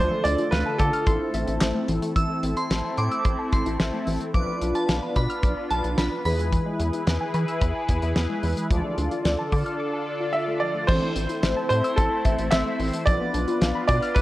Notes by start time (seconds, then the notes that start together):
Already playing: D3 A3 D4 F4 A4 C5
0.11 A3
0.24 D2 D4 D5, closed hi-hat
0.38 F4, closed hi-hat
0.51 D2 B4 F5, snare, closed hi-hat
0.66 A5
0.78 D3 A4 D6, kick, closed hi-hat
0.93 F6, closed hi-hat
1.06 A1 A3 C4 E4 A4 C6, kick, closed hi-hat
1.34 A1 E5, closed hi-hat
1.48 A1, closed hi-hat
1.61 A1 C4, snare, clap, closed hi-hat
1.75 A3
1.88 A1 E3, closed hi-hat
2.02 A3, closed hi-hat
2.16 A1 E3 A3 C4 E4 A4 E6, kick, closed hi-hat
2.30 A3
2.43 A1 C4, closed hi-hat
2.57 E4 C6, closed hi-hat
2.70 A1, snare, closed hi-hat
2.84 A5
2.97 A2 C6 D6, closed hi-hat
3.11 E6, closed hi-hat
3.25 A1 C6, kick, closed hi-hat
3.39 A5
3.52 A1 C6, kick, closed hi-hat
3.66 A1 E4, closed hi-hat
3.80 A1 C4, snare, closed hi-hat
3.93 A3
4.07 A1 E3, open hi-hat
4.21 A3, closed hi-hat
4.34 B1 F3 B3 D4 F4 B4 D6, kick, closed hi-hat
4.48 B3
4.61 B1 D4, closed hi-hat
4.75 F4 A5, closed hi-hat
4.89 B1, snare, closed hi-hat
5.02 B5
5.16 B2 B5 D6, kick, closed hi-hat
5.30 F6, closed hi-hat
5.43 B1 D6, kick, closed hi-hat
5.57 B5
5.70 B1 A5, closed hi-hat
5.84 B1 F4, closed hi-hat
5.98 B1 D4 B5, snare, closed hi-hat
6.12 B3
6.25 E2 E3 E4 G#4 B4 B5, open hi-hat
6.39 G#3, closed hi-hat
6.52 E3, kick, closed hi-hat
6.66 G#3
6.80 E2 B3, closed hi-hat
6.93 E4, closed hi-hat
7.07 E2, snare, closed hi-hat
7.21 G#5
7.34 E3 B5, closed hi-hat
7.48 E6, closed hi-hat
7.61 E2 B5, kick, closed hi-hat
7.75 G#5
7.89 E2, kick, closed hi-hat
8.02 E2 E4, closed hi-hat
8.16 E2 B3, snare, closed hi-hat
8.30 G#3
8.43 E2 E3, open hi-hat
8.57 G#3, closed hi-hat
8.70 D2 D3 F3 D4 F4 A4 D5, kick, closed hi-hat
8.84 A3
8.98 D2 D4, closed hi-hat
9.11 F4, closed hi-hat
9.25 D2, snare, closed hi-hat
9.39 A5
9.52 D3 D6, kick, open hi-hat
9.66 F6, closed hi-hat
9.80 D6
9.93 A5
10.20 F4
10.33 D4 E5
10.48 A3
10.60 F3 D5
10.75 A3
10.87 A1 E3 A3 C4 E4 A4 C5, kick, crash
11.02 A3
11.16 A1 C4, closed hi-hat
11.29 E4, closed hi-hat
11.43 A1 E5, snare, closed hi-hat
11.57 A5
11.69 A2 C5 C6, closed hi-hat
11.84 E6, closed hi-hat
11.96 A1 A4 C6, kick, closed hi-hat
12.25 A1 E5, kick, closed hi-hat
12.39 A1, closed hi-hat
12.51 A1 C4 E5, snare, clap, closed hi-hat
12.66 A3
12.79 A1 E3, open hi-hat
12.93 A3, closed hi-hat
13.06 B1 F3 B3 D4 F4 B4 D5, kick, closed hi-hat
13.20 B3
13.34 B1 D4, closed hi-hat
13.48 F4, closed hi-hat
13.61 B1 F5, snare, closed hi-hat
13.75 B5
13.87 B2 D5 D6, kick, closed hi-hat
14.02 F6, closed hi-hat
14.15 B1 B4 D6, kick, closed hi-hat